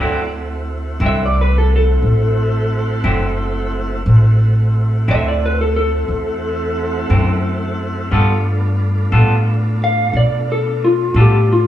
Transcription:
0.00 0.98 D2 medium
0.00 0.20 D3 medium
0.00 0.21 F#3 medium
0.00 4.01 A3 medium
0.00 4.01 C4 medium
0.00 0.21 C4 medium
0.00 4.01 E4 medium
0.00 0.21 E4 medium
0.00 4.01 F#4 medium
0.00 0.32 D5 medium
1.00 1.99 C2 medium
1.00 1.23 D3 medium
1.00 1.23 F#3 medium
1.00 1.22 C4 medium
1.00 1.22 E4 medium
1.06 1.21 E5 medium
1.25 1.39 D5 medium
1.41 1.55 B4 medium
1.58 1.72 A4 medium
1.76 3.71 A4 medium
2.02 3.01 A1 medium
3.04 4.03 F#1 medium
3.04 3.25 D3 medium
3.04 3.26 F#3 medium
3.04 3.25 C4 medium
3.04 3.25 E4 medium
4.06 5.04 A1 medium
4.06 8.09 A3 medium
4.06 8.09 C4 medium
4.06 8.09 E4 medium
4.06 8.09 F#4 medium
5.08 6.06 D2 medium
5.08 5.29 D3 medium
5.08 5.28 F#3 medium
5.08 5.28 C4 medium
5.08 5.28 E4 medium
5.08 5.26 E5 loud
5.28 5.43 D5 medium
5.46 5.60 B4 medium
5.61 5.75 A4 medium
5.76 7.75 A4 medium
6.08 7.07 E2 medium
7.10 8.09 F#2 medium
7.10 7.31 D3 medium
7.10 7.32 F#3 medium
7.10 7.31 C4 medium
7.10 7.31 E4 medium
8.11 9.10 G2 medium
8.11 8.32 G3 medium
8.11 11.67 A3 medium
8.11 11.67 B3 medium
8.11 8.32 B3 medium
8.11 11.67 D4 medium
8.11 11.67 F4 medium
8.11 8.32 F4 medium
8.11 8.33 A4 medium
9.12 10.11 A2 medium
9.12 9.34 G3 medium
9.12 9.34 B3 medium
9.12 9.34 F4 medium
9.12 9.33 A4 medium
9.84 10.15 F5 medium
10.13 11.13 B2 medium
10.13 10.49 D5 medium
10.52 10.83 A4 medium
10.84 11.16 F4 medium
11.14 11.67 A2 medium
11.14 11.38 G3 medium
11.14 11.38 B3 medium
11.14 11.37 F4 medium
11.14 11.37 A4 medium
11.20 11.51 G4 medium
11.53 11.67 F4 medium

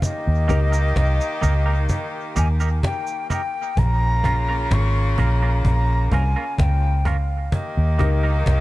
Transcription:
0.02 3.27 D#3 medium
0.02 3.27 A#3 medium
0.02 3.27 G4 loud
0.02 2.07 D#5 medium
0.02 cajon bass loud
0.02 cabasa medium
0.27 0.48 D#2 medium
0.48 0.93 C#2 loud
0.48 0.59 A#3 medium
0.48 0.71 A#3 loud
0.48 0.59 D#4 medium
0.48 0.72 D#4 medium
0.48 0.59 G4 medium
0.48 0.72 G4 medium
0.48 0.60 A#4 medium
0.48 0.72 A#4 loud
0.48 cajon bass medium
0.48 cajon slap medium
0.48 cabasa soft
0.72 0.81 A#3 medium
0.72 0.81 D#4 medium
0.72 0.80 G4 medium
0.72 0.80 A#4 medium
0.72 cabasa medium
0.96 1.18 C2 medium
0.96 cajon bass loud
0.96 cajon slap medium
1.21 cabasa soft
1.41 1.87 C#2 medium
1.41 1.52 A#3 medium
1.41 1.53 D#4 medium
1.41 1.53 G4 medium
1.41 1.53 A#4 loud
1.41 cajon bass medium
1.41 cabasa medium
1.66 1.75 A#3 soft
1.66 1.74 D#4 medium
1.66 1.74 G4 medium
1.66 1.74 A#4 medium
1.89 cajon bass loud
1.89 cabasa medium
2.36 2.80 D#2 medium
2.36 2.46 A#3 medium
2.36 2.47 D#4 medium
2.36 2.47 G4 medium
2.36 2.47 A#4 medium
2.36 2.48 G#5 medium
2.36 cajon bass medium
2.36 cabasa medium
2.60 2.69 A#3 soft
2.60 2.69 D#4 medium
2.60 2.68 G4 medium
2.60 2.68 A#4 medium
2.60 cabasa medium
2.83 3.28 G5 loud
2.83 cajon bass loud
2.83 cajon slap loud
3.07 cabasa soft
3.30 3.40 A#3 medium
3.30 3.41 D#4 medium
3.30 3.41 G4 medium
3.30 3.41 A#4 medium
3.30 3.80 G5 medium
3.30 cajon bass medium
3.30 cabasa medium
3.77 4.67 A#1 loud
3.77 7.01 C#3 medium
3.77 7.01 A#3 medium
3.77 7.01 F4 medium
3.77 4.75 A#5 loud
3.77 cajon bass loud
4.24 4.34 A#3 medium
4.24 4.34 C#4 medium
4.24 4.35 F4 medium
4.24 4.35 A#4 medium
4.24 cajon bass loud
4.24 cajon slap medium
4.49 4.57 A#3 medium
4.49 4.56 C#4 medium
4.49 4.56 F4 medium
4.49 4.56 A#4 medium
4.71 5.15 G#1 medium
4.71 5.21 C#6 medium
4.71 cajon bass loud
4.71 cajon slap loud
5.18 5.62 A#1 medium
5.18 5.28 A#3 medium
5.18 5.28 C#4 medium
5.18 5.28 F4 medium
5.18 5.29 A#4 medium
5.18 5.66 A#5 medium
5.18 cajon bass medium
5.42 5.50 A#3 soft
5.42 5.50 C#4 medium
5.42 5.50 F4 medium
5.42 5.50 A#4 medium
5.65 6.08 A#1 medium
5.65 6.09 A#5 medium
5.65 cajon bass loud
6.12 6.34 C2 medium
6.12 6.22 A#3 medium
6.12 6.22 C#4 medium
6.12 6.23 F4 loud
6.12 6.23 A#4 medium
6.12 6.62 G#5 medium
6.12 cajon bass medium
6.36 6.44 A#3 medium
6.36 6.44 C#4 medium
6.36 6.44 F4 medium
6.36 6.43 A#4 medium
6.58 7.48 C#2 medium
6.58 7.09 G5 medium
6.58 cajon bass loud
6.58 cajon slap loud
7.05 7.15 A#3 medium
7.05 7.16 C#4 medium
7.05 7.16 F4 medium
7.05 7.16 A#4 medium
7.05 7.55 F5 medium
7.05 cajon bass medium
7.52 8.61 D#3 medium
7.52 8.61 A#3 medium
7.52 8.61 G4 loud
7.52 8.61 D#5 medium
7.52 cajon bass loud
7.77 7.98 D#2 medium
7.99 8.43 C#2 medium
7.99 8.21 A#3 medium
7.99 8.09 A#3 medium
7.99 8.21 D#4 medium
7.99 8.09 D#4 medium
7.99 8.22 G4 medium
7.99 8.10 G4 medium
7.99 8.22 A#4 medium
7.99 8.10 A#4 medium
7.99 cajon bass medium
7.99 cajon slap medium
8.23 8.32 A#3 medium
8.23 8.31 D#4 medium
8.23 8.31 G4 medium
8.23 8.31 A#4 medium
8.46 8.61 C2 medium
8.46 cajon bass loud
8.46 cajon slap loud

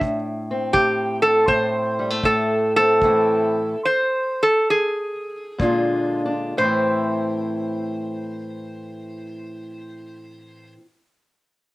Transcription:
0.00 0.74 A2 medium
0.00 kick medium
0.51 2.76 C4 medium
0.73 1.46 A2 medium
0.73 1.22 G4 medium
0.73 kick medium
1.22 1.45 A4 medium
1.47 2.22 A2 medium
1.47 2.26 C5 loud
1.47 kick medium
1.99 2.10 G3 medium
2.10 3.02 A3 soft
2.23 3.02 A2 medium
2.23 2.75 A4 loud
2.23 kick medium
2.76 3.00 C4 medium
2.76 3.80 A4 medium
3.02 3.73 A2 medium
3.02 3.73 E3 medium
3.02 3.73 A3 medium
3.02 3.58 C4 medium
3.02 3.74 E4 medium
3.02 kick medium
3.85 4.43 C5 medium
4.43 4.68 A4 medium
4.70 6.20 G#4 medium
5.58 6.52 A#2 medium
5.58 6.56 D3 medium
5.58 6.52 G#3 medium
5.58 6.24 D4 medium
5.58 6.53 F4 medium
5.58 kick medium
6.26 6.53 D4 medium
6.57 10.76 A2 medium
6.57 10.78 E3 medium
6.57 10.73 C5 medium
6.61 10.80 A3 medium
6.61 10.82 C4 medium
6.65 10.84 E4 medium

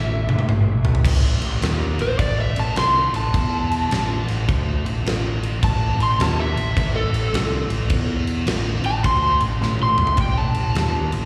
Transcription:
0.00 0.25 A1 medium
0.00 0.45 E5 loud
0.27 0.46 G1 loud
0.27 high tom medium
0.39 high tom medium
0.47 1.00 A1 loud
0.47 mid tom medium
0.85 floor tom loud
0.95 floor tom medium
1.05 1.39 A1 medium
1.05 kick loud
1.05 crash loud
1.05 crash medium
1.41 1.60 A1 medium
1.41 crash medium
1.61 1.96 D#2 medium
1.61 snare loud
1.61 crash medium
1.98 2.17 A1 medium
1.98 2.19 C5 loud
1.98 crash medium
2.19 2.53 A1 medium
2.19 2.38 D5 medium
2.19 kick loud
2.19 crash medium
2.41 2.58 E5 medium
2.56 2.75 A1 medium
2.56 2.77 A5 medium
2.56 crash medium
2.76 3.11 C2 medium
2.76 3.14 C6 medium
2.76 snare loud
2.76 crash medium
3.13 3.32 A1 medium
3.13 4.26 A5 medium
3.13 crash medium
3.34 3.87 E2 loud
3.34 kick loud
3.34 crash medium
3.71 crash medium
3.91 4.25 A1 loud
3.91 snare loud
3.91 crash medium
4.28 4.47 A1 medium
4.28 snare soft
4.28 crash medium
4.48 4.82 D2 medium
4.48 kick loud
4.48 crash medium
4.85 5.03 A1 medium
4.85 crash medium
5.05 5.58 A1 medium
5.05 snare loud
5.05 crash medium
5.43 crash medium
5.63 5.97 A1 loud
5.63 6.00 A5 loud
5.63 kick loud
5.63 crash medium
5.98 6.17 A1 medium
5.98 crash medium
6.03 6.20 C6 medium
6.19 6.53 D#2 loud
6.19 6.39 A5 medium
6.19 snare loud
6.19 crash medium
6.40 6.94 E5 medium
6.55 6.74 A1 medium
6.55 crash medium
6.77 7.11 A1 medium
6.77 kick loud
6.77 crash medium
6.96 7.51 A4 loud
7.12 7.31 A1 medium
7.12 crash medium
7.32 7.67 C2 medium
7.32 snare loud
7.32 crash medium
7.69 7.88 A1 medium
7.69 crash medium
7.90 8.43 E2 loud
7.90 kick loud
7.90 crash medium
8.27 crash medium
8.46 8.81 A1 loud
8.46 snare loud
8.46 crash medium
8.83 9.02 A1 medium
8.83 9.04 A5 loud
8.83 crash medium
9.04 9.39 D2 medium
9.04 9.42 C6 medium
9.04 kick loud
9.04 crash medium
9.40 9.60 A1 medium
9.40 crash medium
9.61 10.14 A1 loud
9.61 snare medium
9.79 10.18 C6 medium
9.79 high tom medium
9.98 mid tom medium
10.07 floor tom loud
10.17 10.52 A1 loud
10.17 10.38 G5 medium
10.17 kick loud
10.17 crash medium
10.38 10.93 A5 loud
10.54 10.74 A1 medium
10.54 crash medium
10.75 11.09 D#2 loud
10.75 snare loud
10.75 crash medium
11.12 11.25 A1 medium
11.12 crash medium

